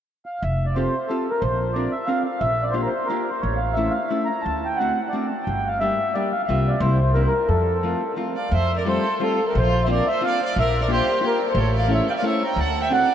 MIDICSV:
0, 0, Header, 1, 5, 480
1, 0, Start_track
1, 0, Key_signature, -1, "major"
1, 0, Tempo, 334076
1, 606, Time_signature, 3, 2, 24, 8
1, 4440, Tempo, 337838
1, 10680, Tempo, 344432
1, 13560, Tempo, 335946
1, 18698, End_track
2, 0, Start_track
2, 0, Title_t, "Accordion"
2, 0, Program_c, 0, 21
2, 369, Note_on_c, 0, 77, 57
2, 613, Note_off_c, 0, 77, 0
2, 616, Note_on_c, 0, 76, 66
2, 944, Note_off_c, 0, 76, 0
2, 946, Note_on_c, 0, 74, 54
2, 1082, Note_on_c, 0, 72, 69
2, 1102, Note_off_c, 0, 74, 0
2, 1551, Note_on_c, 0, 69, 58
2, 1575, Note_off_c, 0, 72, 0
2, 1868, Note_on_c, 0, 70, 50
2, 1885, Note_off_c, 0, 69, 0
2, 2011, Note_on_c, 0, 72, 71
2, 2040, Note_off_c, 0, 70, 0
2, 2485, Note_on_c, 0, 74, 65
2, 2521, Note_off_c, 0, 72, 0
2, 2752, Note_on_c, 0, 76, 65
2, 2758, Note_off_c, 0, 74, 0
2, 2955, Note_on_c, 0, 77, 82
2, 2998, Note_off_c, 0, 76, 0
2, 3200, Note_off_c, 0, 77, 0
2, 3221, Note_on_c, 0, 77, 59
2, 3451, Note_on_c, 0, 76, 87
2, 3473, Note_off_c, 0, 77, 0
2, 3768, Note_on_c, 0, 74, 61
2, 3795, Note_off_c, 0, 76, 0
2, 3897, Note_on_c, 0, 72, 73
2, 3948, Note_off_c, 0, 74, 0
2, 4033, Note_off_c, 0, 72, 0
2, 4049, Note_on_c, 0, 70, 68
2, 4112, Note_on_c, 0, 72, 73
2, 4157, Note_off_c, 0, 70, 0
2, 4391, Note_on_c, 0, 70, 78
2, 4425, Note_off_c, 0, 72, 0
2, 4723, Note_on_c, 0, 72, 53
2, 4749, Note_off_c, 0, 70, 0
2, 4889, Note_on_c, 0, 73, 75
2, 4909, Note_off_c, 0, 72, 0
2, 5120, Note_on_c, 0, 77, 64
2, 5162, Note_off_c, 0, 73, 0
2, 5348, Note_on_c, 0, 76, 83
2, 5387, Note_off_c, 0, 77, 0
2, 5594, Note_on_c, 0, 77, 69
2, 5634, Note_off_c, 0, 76, 0
2, 5840, Note_on_c, 0, 76, 69
2, 5869, Note_off_c, 0, 77, 0
2, 6092, Note_on_c, 0, 82, 69
2, 6127, Note_off_c, 0, 76, 0
2, 6328, Note_on_c, 0, 81, 80
2, 6363, Note_off_c, 0, 82, 0
2, 6660, Note_on_c, 0, 79, 64
2, 6690, Note_off_c, 0, 81, 0
2, 6812, Note_on_c, 0, 78, 83
2, 6850, Note_off_c, 0, 79, 0
2, 7278, Note_on_c, 0, 74, 64
2, 7334, Note_off_c, 0, 78, 0
2, 7545, Note_on_c, 0, 81, 55
2, 7565, Note_off_c, 0, 74, 0
2, 7764, Note_on_c, 0, 79, 70
2, 7806, Note_off_c, 0, 81, 0
2, 8107, Note_on_c, 0, 77, 74
2, 8121, Note_off_c, 0, 79, 0
2, 8271, Note_off_c, 0, 77, 0
2, 8286, Note_on_c, 0, 76, 86
2, 8768, Note_on_c, 0, 74, 67
2, 8787, Note_off_c, 0, 76, 0
2, 9025, Note_off_c, 0, 74, 0
2, 9028, Note_on_c, 0, 77, 51
2, 9167, Note_off_c, 0, 77, 0
2, 9205, Note_on_c, 0, 77, 60
2, 9236, Note_on_c, 0, 76, 86
2, 9266, Note_off_c, 0, 77, 0
2, 9537, Note_on_c, 0, 74, 67
2, 9567, Note_off_c, 0, 76, 0
2, 9714, Note_off_c, 0, 74, 0
2, 9715, Note_on_c, 0, 72, 70
2, 10188, Note_on_c, 0, 70, 72
2, 10212, Note_off_c, 0, 72, 0
2, 10300, Note_off_c, 0, 70, 0
2, 10312, Note_on_c, 0, 72, 62
2, 10382, Note_on_c, 0, 70, 65
2, 10410, Note_off_c, 0, 72, 0
2, 10679, Note_off_c, 0, 70, 0
2, 10681, Note_on_c, 0, 69, 65
2, 11584, Note_off_c, 0, 69, 0
2, 11906, Note_on_c, 0, 77, 50
2, 12143, Note_off_c, 0, 77, 0
2, 12149, Note_on_c, 0, 76, 71
2, 12471, Note_off_c, 0, 76, 0
2, 12471, Note_on_c, 0, 74, 72
2, 12626, Note_off_c, 0, 74, 0
2, 12632, Note_on_c, 0, 72, 87
2, 13108, Note_on_c, 0, 69, 71
2, 13114, Note_off_c, 0, 72, 0
2, 13423, Note_off_c, 0, 69, 0
2, 13448, Note_on_c, 0, 70, 62
2, 13588, Note_off_c, 0, 70, 0
2, 13603, Note_on_c, 0, 72, 80
2, 13972, Note_on_c, 0, 76, 61
2, 14017, Note_off_c, 0, 72, 0
2, 14036, Note_off_c, 0, 76, 0
2, 14077, Note_on_c, 0, 74, 83
2, 14311, Note_on_c, 0, 76, 93
2, 14313, Note_off_c, 0, 74, 0
2, 14538, Note_off_c, 0, 76, 0
2, 14550, Note_on_c, 0, 77, 92
2, 14785, Note_off_c, 0, 77, 0
2, 14807, Note_on_c, 0, 77, 67
2, 15026, Note_off_c, 0, 77, 0
2, 15054, Note_on_c, 0, 76, 92
2, 15353, Note_off_c, 0, 76, 0
2, 15375, Note_on_c, 0, 74, 70
2, 15506, Note_off_c, 0, 74, 0
2, 15537, Note_on_c, 0, 72, 95
2, 15988, Note_off_c, 0, 72, 0
2, 16013, Note_on_c, 0, 70, 70
2, 16303, Note_off_c, 0, 70, 0
2, 16337, Note_on_c, 0, 72, 65
2, 16462, Note_off_c, 0, 72, 0
2, 16489, Note_on_c, 0, 73, 74
2, 16708, Note_off_c, 0, 73, 0
2, 16755, Note_on_c, 0, 77, 79
2, 16930, Note_off_c, 0, 77, 0
2, 16976, Note_on_c, 0, 76, 79
2, 17191, Note_off_c, 0, 76, 0
2, 17198, Note_on_c, 0, 79, 74
2, 17211, Note_on_c, 0, 77, 71
2, 17241, Note_off_c, 0, 77, 0
2, 17261, Note_off_c, 0, 79, 0
2, 17325, Note_on_c, 0, 77, 69
2, 17417, Note_off_c, 0, 77, 0
2, 17450, Note_on_c, 0, 76, 77
2, 17676, Note_off_c, 0, 76, 0
2, 17690, Note_on_c, 0, 82, 73
2, 17906, Note_off_c, 0, 82, 0
2, 17908, Note_on_c, 0, 81, 86
2, 18192, Note_off_c, 0, 81, 0
2, 18226, Note_on_c, 0, 79, 80
2, 18378, Note_off_c, 0, 79, 0
2, 18384, Note_on_c, 0, 78, 94
2, 18698, Note_off_c, 0, 78, 0
2, 18698, End_track
3, 0, Start_track
3, 0, Title_t, "Violin"
3, 0, Program_c, 1, 40
3, 11905, Note_on_c, 1, 74, 55
3, 12119, Note_off_c, 1, 74, 0
3, 12141, Note_on_c, 1, 72, 80
3, 12435, Note_off_c, 1, 72, 0
3, 12469, Note_on_c, 1, 70, 62
3, 12596, Note_off_c, 1, 70, 0
3, 12604, Note_on_c, 1, 69, 70
3, 13052, Note_off_c, 1, 69, 0
3, 13125, Note_on_c, 1, 65, 63
3, 13402, Note_off_c, 1, 65, 0
3, 13477, Note_on_c, 1, 67, 48
3, 13590, Note_off_c, 1, 67, 0
3, 13619, Note_on_c, 1, 65, 81
3, 13986, Note_off_c, 1, 65, 0
3, 14003, Note_on_c, 1, 72, 53
3, 14048, Note_off_c, 1, 72, 0
3, 14079, Note_on_c, 1, 70, 68
3, 14291, Note_off_c, 1, 70, 0
3, 14343, Note_on_c, 1, 72, 69
3, 14534, Note_off_c, 1, 72, 0
3, 14591, Note_on_c, 1, 74, 86
3, 14787, Note_off_c, 1, 74, 0
3, 14842, Note_on_c, 1, 74, 75
3, 15023, Note_off_c, 1, 74, 0
3, 15055, Note_on_c, 1, 70, 84
3, 15324, Note_off_c, 1, 70, 0
3, 15360, Note_on_c, 1, 70, 71
3, 15486, Note_off_c, 1, 70, 0
3, 15512, Note_on_c, 1, 67, 86
3, 15931, Note_off_c, 1, 67, 0
3, 15962, Note_on_c, 1, 67, 68
3, 16248, Note_off_c, 1, 67, 0
3, 16289, Note_on_c, 1, 69, 58
3, 16420, Note_off_c, 1, 69, 0
3, 16429, Note_on_c, 1, 69, 76
3, 16655, Note_off_c, 1, 69, 0
3, 16715, Note_on_c, 1, 74, 71
3, 16908, Note_off_c, 1, 74, 0
3, 16924, Note_on_c, 1, 73, 62
3, 17143, Note_off_c, 1, 73, 0
3, 17173, Note_on_c, 1, 74, 67
3, 17202, Note_off_c, 1, 74, 0
3, 17205, Note_on_c, 1, 76, 51
3, 17260, Note_off_c, 1, 76, 0
3, 17310, Note_on_c, 1, 74, 79
3, 17400, Note_off_c, 1, 74, 0
3, 17425, Note_on_c, 1, 73, 70
3, 17641, Note_off_c, 1, 73, 0
3, 17698, Note_on_c, 1, 79, 70
3, 17889, Note_off_c, 1, 79, 0
3, 17911, Note_on_c, 1, 78, 87
3, 18194, Note_off_c, 1, 78, 0
3, 18240, Note_on_c, 1, 76, 74
3, 18370, Note_off_c, 1, 76, 0
3, 18396, Note_on_c, 1, 74, 79
3, 18698, Note_off_c, 1, 74, 0
3, 18698, End_track
4, 0, Start_track
4, 0, Title_t, "Hollow-body jazz guitar"
4, 0, Program_c, 2, 26
4, 1092, Note_on_c, 2, 60, 46
4, 1102, Note_on_c, 2, 67, 40
4, 1105, Note_on_c, 2, 65, 37
4, 1111, Note_on_c, 2, 69, 47
4, 1337, Note_off_c, 2, 60, 0
4, 1340, Note_off_c, 2, 65, 0
4, 1341, Note_off_c, 2, 67, 0
4, 1345, Note_off_c, 2, 69, 0
4, 1575, Note_on_c, 2, 60, 39
4, 1585, Note_on_c, 2, 67, 37
4, 1589, Note_on_c, 2, 65, 45
4, 1593, Note_on_c, 2, 69, 46
4, 1817, Note_off_c, 2, 60, 0
4, 1819, Note_off_c, 2, 65, 0
4, 1820, Note_off_c, 2, 69, 0
4, 1821, Note_off_c, 2, 67, 0
4, 2524, Note_on_c, 2, 60, 40
4, 2529, Note_on_c, 2, 62, 39
4, 2533, Note_on_c, 2, 70, 56
4, 2538, Note_on_c, 2, 65, 35
4, 2770, Note_off_c, 2, 62, 0
4, 2771, Note_off_c, 2, 65, 0
4, 2772, Note_off_c, 2, 60, 0
4, 2774, Note_off_c, 2, 70, 0
4, 2983, Note_on_c, 2, 60, 46
4, 2991, Note_on_c, 2, 62, 43
4, 3000, Note_on_c, 2, 65, 40
4, 3002, Note_on_c, 2, 70, 51
4, 3238, Note_off_c, 2, 62, 0
4, 3239, Note_off_c, 2, 65, 0
4, 3240, Note_off_c, 2, 60, 0
4, 3247, Note_off_c, 2, 70, 0
4, 3933, Note_on_c, 2, 58, 49
4, 3938, Note_on_c, 2, 62, 43
4, 3944, Note_on_c, 2, 65, 43
4, 3952, Note_on_c, 2, 67, 43
4, 4193, Note_off_c, 2, 58, 0
4, 4196, Note_off_c, 2, 65, 0
4, 4197, Note_off_c, 2, 62, 0
4, 4198, Note_off_c, 2, 67, 0
4, 4448, Note_on_c, 2, 58, 43
4, 4454, Note_on_c, 2, 62, 45
4, 4459, Note_on_c, 2, 67, 45
4, 4468, Note_on_c, 2, 65, 51
4, 4695, Note_off_c, 2, 58, 0
4, 4697, Note_off_c, 2, 67, 0
4, 4699, Note_off_c, 2, 62, 0
4, 4699, Note_off_c, 2, 65, 0
4, 5404, Note_on_c, 2, 57, 55
4, 5411, Note_on_c, 2, 61, 37
4, 5415, Note_on_c, 2, 64, 50
4, 5418, Note_on_c, 2, 69, 47
4, 5653, Note_off_c, 2, 61, 0
4, 5656, Note_off_c, 2, 57, 0
4, 5658, Note_off_c, 2, 69, 0
4, 5660, Note_off_c, 2, 64, 0
4, 5879, Note_on_c, 2, 57, 46
4, 5885, Note_on_c, 2, 64, 39
4, 5890, Note_on_c, 2, 61, 40
4, 5899, Note_on_c, 2, 69, 44
4, 6139, Note_off_c, 2, 57, 0
4, 6140, Note_off_c, 2, 61, 0
4, 6143, Note_off_c, 2, 64, 0
4, 6145, Note_off_c, 2, 69, 0
4, 6873, Note_on_c, 2, 60, 36
4, 6877, Note_on_c, 2, 57, 46
4, 6889, Note_on_c, 2, 62, 34
4, 6893, Note_on_c, 2, 66, 57
4, 7118, Note_off_c, 2, 60, 0
4, 7121, Note_off_c, 2, 57, 0
4, 7124, Note_off_c, 2, 62, 0
4, 7128, Note_off_c, 2, 66, 0
4, 7336, Note_on_c, 2, 60, 40
4, 7338, Note_on_c, 2, 57, 44
4, 7351, Note_on_c, 2, 66, 43
4, 7352, Note_on_c, 2, 62, 35
4, 7586, Note_off_c, 2, 60, 0
4, 7589, Note_off_c, 2, 57, 0
4, 7590, Note_off_c, 2, 66, 0
4, 7594, Note_off_c, 2, 62, 0
4, 8303, Note_on_c, 2, 55, 49
4, 8308, Note_on_c, 2, 58, 37
4, 8310, Note_on_c, 2, 62, 45
4, 8323, Note_on_c, 2, 67, 46
4, 8549, Note_off_c, 2, 58, 0
4, 8551, Note_off_c, 2, 55, 0
4, 8553, Note_off_c, 2, 62, 0
4, 8554, Note_off_c, 2, 67, 0
4, 8792, Note_on_c, 2, 55, 49
4, 8796, Note_on_c, 2, 58, 33
4, 8798, Note_on_c, 2, 62, 39
4, 8806, Note_on_c, 2, 67, 42
4, 9028, Note_off_c, 2, 58, 0
4, 9029, Note_off_c, 2, 55, 0
4, 9032, Note_off_c, 2, 67, 0
4, 9035, Note_off_c, 2, 62, 0
4, 9269, Note_on_c, 2, 58, 61
4, 9276, Note_on_c, 2, 55, 57
4, 9277, Note_on_c, 2, 60, 43
4, 9282, Note_on_c, 2, 65, 60
4, 9641, Note_off_c, 2, 58, 0
4, 9642, Note_off_c, 2, 60, 0
4, 9644, Note_off_c, 2, 65, 0
4, 9645, Note_off_c, 2, 55, 0
4, 9727, Note_on_c, 2, 55, 47
4, 9732, Note_on_c, 2, 58, 45
4, 9739, Note_on_c, 2, 60, 45
4, 9749, Note_on_c, 2, 64, 50
4, 9971, Note_off_c, 2, 55, 0
4, 9976, Note_off_c, 2, 58, 0
4, 9976, Note_off_c, 2, 60, 0
4, 9977, Note_off_c, 2, 64, 0
4, 10212, Note_on_c, 2, 55, 49
4, 10218, Note_on_c, 2, 60, 44
4, 10226, Note_on_c, 2, 58, 41
4, 10230, Note_on_c, 2, 64, 43
4, 10454, Note_off_c, 2, 55, 0
4, 10457, Note_off_c, 2, 60, 0
4, 10460, Note_off_c, 2, 64, 0
4, 10461, Note_off_c, 2, 58, 0
4, 11167, Note_on_c, 2, 57, 45
4, 11171, Note_on_c, 2, 53, 48
4, 11178, Note_on_c, 2, 60, 41
4, 11188, Note_on_c, 2, 65, 48
4, 11409, Note_off_c, 2, 57, 0
4, 11413, Note_off_c, 2, 53, 0
4, 11413, Note_off_c, 2, 60, 0
4, 11415, Note_off_c, 2, 65, 0
4, 11630, Note_on_c, 2, 53, 49
4, 11638, Note_on_c, 2, 60, 44
4, 11643, Note_on_c, 2, 57, 38
4, 11647, Note_on_c, 2, 65, 53
4, 11889, Note_off_c, 2, 53, 0
4, 11892, Note_off_c, 2, 57, 0
4, 11893, Note_off_c, 2, 60, 0
4, 11894, Note_off_c, 2, 65, 0
4, 12589, Note_on_c, 2, 55, 56
4, 12594, Note_on_c, 2, 57, 45
4, 12604, Note_on_c, 2, 65, 56
4, 12605, Note_on_c, 2, 60, 44
4, 12848, Note_off_c, 2, 57, 0
4, 12849, Note_off_c, 2, 55, 0
4, 12850, Note_off_c, 2, 60, 0
4, 12854, Note_off_c, 2, 65, 0
4, 13071, Note_on_c, 2, 55, 60
4, 13081, Note_on_c, 2, 57, 44
4, 13086, Note_on_c, 2, 65, 64
4, 13089, Note_on_c, 2, 60, 46
4, 13327, Note_off_c, 2, 55, 0
4, 13327, Note_off_c, 2, 57, 0
4, 13327, Note_off_c, 2, 60, 0
4, 13332, Note_off_c, 2, 65, 0
4, 14014, Note_on_c, 2, 58, 66
4, 14023, Note_on_c, 2, 60, 62
4, 14029, Note_on_c, 2, 62, 46
4, 14032, Note_on_c, 2, 65, 62
4, 14277, Note_off_c, 2, 58, 0
4, 14279, Note_off_c, 2, 62, 0
4, 14280, Note_off_c, 2, 60, 0
4, 14282, Note_off_c, 2, 65, 0
4, 14503, Note_on_c, 2, 58, 57
4, 14511, Note_on_c, 2, 62, 52
4, 14514, Note_on_c, 2, 60, 38
4, 14514, Note_on_c, 2, 65, 63
4, 14759, Note_off_c, 2, 58, 0
4, 14760, Note_off_c, 2, 60, 0
4, 14762, Note_off_c, 2, 65, 0
4, 14764, Note_off_c, 2, 62, 0
4, 15467, Note_on_c, 2, 58, 60
4, 15473, Note_on_c, 2, 62, 50
4, 15473, Note_on_c, 2, 65, 44
4, 15482, Note_on_c, 2, 67, 56
4, 15712, Note_off_c, 2, 65, 0
4, 15714, Note_off_c, 2, 58, 0
4, 15716, Note_off_c, 2, 62, 0
4, 15717, Note_off_c, 2, 67, 0
4, 15930, Note_on_c, 2, 58, 52
4, 15935, Note_on_c, 2, 62, 43
4, 15938, Note_on_c, 2, 65, 40
4, 15947, Note_on_c, 2, 67, 53
4, 16181, Note_off_c, 2, 62, 0
4, 16182, Note_off_c, 2, 58, 0
4, 16185, Note_off_c, 2, 65, 0
4, 16185, Note_off_c, 2, 67, 0
4, 16889, Note_on_c, 2, 57, 44
4, 16896, Note_on_c, 2, 61, 49
4, 16899, Note_on_c, 2, 69, 63
4, 16906, Note_on_c, 2, 64, 44
4, 17143, Note_off_c, 2, 61, 0
4, 17144, Note_off_c, 2, 57, 0
4, 17144, Note_off_c, 2, 64, 0
4, 17147, Note_off_c, 2, 69, 0
4, 17381, Note_on_c, 2, 57, 60
4, 17393, Note_on_c, 2, 64, 46
4, 17395, Note_on_c, 2, 61, 40
4, 17404, Note_on_c, 2, 69, 63
4, 17638, Note_off_c, 2, 57, 0
4, 17639, Note_off_c, 2, 61, 0
4, 17641, Note_off_c, 2, 64, 0
4, 17647, Note_off_c, 2, 69, 0
4, 18353, Note_on_c, 2, 60, 55
4, 18361, Note_on_c, 2, 62, 38
4, 18369, Note_on_c, 2, 66, 51
4, 18375, Note_on_c, 2, 69, 55
4, 18606, Note_off_c, 2, 60, 0
4, 18606, Note_off_c, 2, 62, 0
4, 18613, Note_off_c, 2, 66, 0
4, 18616, Note_off_c, 2, 69, 0
4, 18698, End_track
5, 0, Start_track
5, 0, Title_t, "Upright bass"
5, 0, Program_c, 3, 32
5, 610, Note_on_c, 3, 29, 80
5, 1231, Note_off_c, 3, 29, 0
5, 2038, Note_on_c, 3, 34, 82
5, 2661, Note_off_c, 3, 34, 0
5, 3460, Note_on_c, 3, 34, 80
5, 4092, Note_off_c, 3, 34, 0
5, 4925, Note_on_c, 3, 33, 74
5, 5553, Note_off_c, 3, 33, 0
5, 6381, Note_on_c, 3, 38, 70
5, 7009, Note_off_c, 3, 38, 0
5, 7821, Note_on_c, 3, 31, 73
5, 8444, Note_off_c, 3, 31, 0
5, 9265, Note_on_c, 3, 36, 69
5, 9567, Note_off_c, 3, 36, 0
5, 9716, Note_on_c, 3, 36, 99
5, 10342, Note_off_c, 3, 36, 0
5, 10684, Note_on_c, 3, 41, 74
5, 11307, Note_off_c, 3, 41, 0
5, 12119, Note_on_c, 3, 41, 89
5, 12746, Note_off_c, 3, 41, 0
5, 13564, Note_on_c, 3, 34, 90
5, 14186, Note_off_c, 3, 34, 0
5, 15009, Note_on_c, 3, 34, 95
5, 15620, Note_off_c, 3, 34, 0
5, 16414, Note_on_c, 3, 33, 96
5, 17043, Note_off_c, 3, 33, 0
5, 17866, Note_on_c, 3, 38, 91
5, 18498, Note_off_c, 3, 38, 0
5, 18698, End_track
0, 0, End_of_file